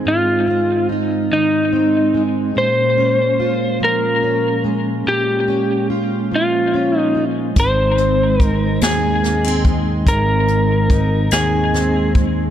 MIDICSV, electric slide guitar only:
0, 0, Header, 1, 2, 480
1, 0, Start_track
1, 0, Key_signature, -4, "major"
1, 0, Tempo, 834492
1, 31, Time_signature, 6, 3, 24, 8
1, 7192, End_track
2, 0, Start_track
2, 0, Title_t, "Electric slide guitar"
2, 0, Program_c, 0, 29
2, 47, Note_on_c, 0, 65, 74
2, 497, Note_off_c, 0, 65, 0
2, 765, Note_on_c, 0, 63, 66
2, 1276, Note_off_c, 0, 63, 0
2, 1484, Note_on_c, 0, 72, 81
2, 2176, Note_off_c, 0, 72, 0
2, 2211, Note_on_c, 0, 70, 75
2, 2659, Note_off_c, 0, 70, 0
2, 2924, Note_on_c, 0, 67, 89
2, 3376, Note_off_c, 0, 67, 0
2, 3656, Note_on_c, 0, 65, 67
2, 4013, Note_off_c, 0, 65, 0
2, 4013, Note_on_c, 0, 63, 67
2, 4162, Note_off_c, 0, 63, 0
2, 4369, Note_on_c, 0, 72, 82
2, 4841, Note_off_c, 0, 72, 0
2, 4841, Note_on_c, 0, 70, 82
2, 5058, Note_off_c, 0, 70, 0
2, 5082, Note_on_c, 0, 68, 64
2, 5535, Note_off_c, 0, 68, 0
2, 5800, Note_on_c, 0, 70, 83
2, 6493, Note_off_c, 0, 70, 0
2, 6519, Note_on_c, 0, 68, 69
2, 6972, Note_off_c, 0, 68, 0
2, 7192, End_track
0, 0, End_of_file